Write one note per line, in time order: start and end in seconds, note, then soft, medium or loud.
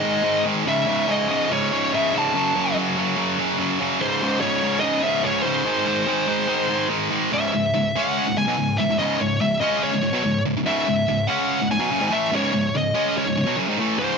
0.00 0.22 G#2 medium
0.00 0.23 D#3 medium
0.00 0.42 D#5 medium
0.04 0.24 G#3 medium
0.23 0.44 G#2 loud
0.23 0.44 D#3 loud
0.23 0.46 G#3 loud
0.45 0.65 G#2 loud
0.45 0.65 D#3 loud
0.45 0.66 G#3 loud
0.66 0.86 C#2 loud
0.66 0.87 G#2 loud
0.66 0.88 C#3 loud
0.66 1.10 E5 medium
0.87 1.06 C#2 medium
0.87 1.08 G#2 loud
0.87 1.08 C#3 loud
1.07 1.28 C#2 loud
1.07 1.29 G#2 loud
1.07 1.30 C#3 loud
1.07 1.52 D#5 loud
1.30 1.48 C#2 medium
1.30 1.50 G#2 medium
1.30 1.50 C#3 loud
1.49 1.70 C#2 medium
1.49 1.71 G#2 loud
1.49 1.72 C#3 loud
1.49 1.90 C#5 loud
1.71 1.91 C#2 medium
1.71 1.92 G#2 medium
1.71 1.92 C#3 medium
1.92 2.12 C#2 medium
1.92 2.12 G#2 loud
1.92 2.13 C#3 loud
1.92 2.13 E5 loud
2.13 2.32 C#2 loud
2.13 2.33 G#2 medium
2.13 2.33 C#3 loud
2.18 2.74 A5 loud
2.34 2.53 F#2 medium
2.34 2.54 C#3 loud
2.34 2.55 F#3 loud
2.55 2.74 F#2 loud
2.55 2.75 C#3 medium
2.55 2.75 F#3 loud
2.75 2.96 F#2 loud
2.75 2.97 C#3 medium
2.75 2.97 F#3 loud
2.97 3.15 F#2 loud
2.97 3.15 C#3 loud
2.97 3.16 F#3 loud
3.16 3.37 F#2 medium
3.16 3.37 C#3 loud
3.16 3.38 F#3 loud
3.38 3.57 F#2 medium
3.38 3.58 C#3 medium
3.38 3.58 F#3 medium
3.58 3.79 F#2 loud
3.58 3.80 C#3 loud
3.58 3.80 F#3 loud
3.80 3.99 F#2 loud
3.80 4.00 C#3 loud
3.80 4.00 F#3 loud
4.01 4.21 C#2 loud
4.01 4.21 G#2 loud
4.01 4.22 C#3 loud
4.01 4.40 C5 medium
4.22 4.40 C#2 loud
4.22 4.41 G#2 medium
4.22 4.42 C#3 loud
4.41 4.61 C#2 medium
4.41 4.61 G#2 medium
4.41 4.62 C#3 loud
4.41 4.80 C#5 medium
4.62 4.81 C#2 loud
4.62 4.81 G#2 loud
4.62 4.82 C#3 loud
4.80 5.02 C#2 medium
4.80 5.03 G#2 loud
4.80 5.03 C#3 loud
4.80 5.01 D#5 loud
5.02 5.23 C#2 medium
5.02 5.23 G#2 medium
5.02 5.23 C#3 medium
5.02 5.25 E5 loud
5.23 5.43 C#2 loud
5.23 5.44 G#2 loud
5.23 5.44 C#3 loud
5.23 5.42 C#5 loud
5.43 5.64 C#2 medium
5.43 5.63 G#2 loud
5.43 5.65 C#3 loud
5.43 6.86 C5 medium
5.65 5.85 G#2 medium
5.65 5.86 D#3 medium
5.65 5.86 G#3 loud
5.86 6.06 G#2 medium
5.86 6.06 D#3 loud
5.86 6.07 G#3 loud
6.07 6.26 G#2 medium
6.07 6.26 D#3 loud
6.07 6.28 G#3 loud
6.27 6.47 G#2 medium
6.27 6.48 D#3 loud
6.27 6.48 G#3 loud
6.48 6.67 G#2 medium
6.48 6.68 D#3 loud
6.48 6.69 G#3 loud
6.69 6.87 G#2 medium
6.69 6.88 D#3 medium
6.69 6.89 G#3 medium
6.89 7.09 G#2 loud
6.89 7.10 D#3 loud
6.89 7.10 G#3 loud
7.10 7.31 G#2 medium
7.10 7.31 D#3 loud
7.10 7.31 G#3 loud
7.32 7.52 C#2 medium
7.32 7.53 G#2 loud
7.32 7.53 C#3 loud
7.32 7.98 E5 medium
7.53 7.70 C#2 medium
7.53 7.71 G#2 medium
7.74 7.91 C#2 medium
7.74 7.91 G#2 medium
7.96 8.26 C#3 medium
7.96 8.27 G#3 loud
7.96 8.27 C#4 loud
7.96 8.35 F#5 loud
8.27 8.35 C#2 medium
8.27 8.36 G#2 medium
8.36 8.47 C#2 medium
8.36 8.47 G#2 medium
8.36 8.80 G#5 loud
8.47 8.57 B2 loud
8.47 8.58 F#3 loud
8.57 8.74 C#2 medium
8.57 8.75 G#2 medium
8.78 8.89 C#2 medium
8.78 8.89 G#2 medium
8.78 8.98 E5 loud
8.90 8.98 C#2 medium
8.90 8.99 G#2 medium
8.99 9.18 C#2 loud
8.99 9.19 G#2 medium
8.99 9.20 C#3 loud
8.99 9.18 D#5 medium
9.20 9.37 C#2 medium
9.20 9.37 G#2 medium
9.20 9.41 C#5 medium
9.41 9.58 C#2 medium
9.41 9.58 G#2 medium
9.41 9.60 E5 loud
9.60 9.92 C#3 loud
9.60 9.92 G#3 loud
9.60 9.92 C#4 loud
9.60 9.83 D#5 loud
9.84 10.42 C#5 medium
9.91 10.01 C#2 medium
9.91 10.02 G#2 medium
10.02 10.12 C#2 medium
10.02 10.13 G#2 medium
10.13 10.23 B2 medium
10.13 10.23 F#3 loud
10.24 10.41 C#2 medium
10.24 10.41 G#2 medium
10.45 10.56 C#2 medium
10.45 10.56 G#2 medium
10.57 10.64 C#2 medium
10.57 10.65 G#2 medium
10.65 10.86 C#2 loud
10.65 10.86 G#2 loud
10.65 10.87 C#3 loud
10.65 11.30 E5 medium
10.87 11.04 C#2 medium
10.87 11.04 G#2 medium
11.08 11.25 C#2 medium
11.08 11.25 G#2 medium
11.27 11.59 C#3 loud
11.27 11.59 G#3 medium
11.27 11.60 C#4 loud
11.27 11.66 F#5 loud
11.61 11.69 C#2 medium
11.61 11.70 G#2 medium
11.71 11.79 C#2 medium
11.71 11.80 G#2 medium
11.71 12.13 G#5 loud
11.79 11.90 B2 medium
11.79 11.90 F#3 loud
11.90 12.00 F#2 loud
11.90 12.00 C#3 loud
12.01 12.10 G#2 medium
12.01 12.11 D#3 loud
12.10 12.31 A2 loud
12.10 12.31 E3 loud
12.10 12.31 A3 loud
12.10 12.33 E5 loud
12.32 12.51 C#2 medium
12.32 12.52 G#2 loud
12.32 12.52 C#3 loud
12.32 12.76 C#5 medium
12.53 12.69 C#2 medium
12.53 12.70 G#2 medium
12.75 12.91 C#2 medium
12.75 12.91 G#2 medium
12.75 13.14 D#5 medium
12.94 13.25 C#3 loud
12.94 13.25 G#3 loud
12.94 13.25 C#4 loud
13.18 13.55 C#5 medium
13.26 13.36 C#2 medium
13.26 13.36 G#2 medium
13.37 13.46 C#2 medium
13.37 13.47 G#2 medium
13.46 13.56 B2 loud
13.46 13.56 F#3 loud
13.56 13.66 F#2 loud
13.56 13.67 C#3 loud
13.68 13.77 G#2 medium
13.68 13.77 D#3 loud
13.78 13.98 A2 loud
13.78 13.98 E3 loud
13.78 13.98 A3 loud
13.99 14.18 C#2 loud
13.99 14.18 G#2 loud
13.99 14.18 C#3 loud
13.99 14.18 C5 medium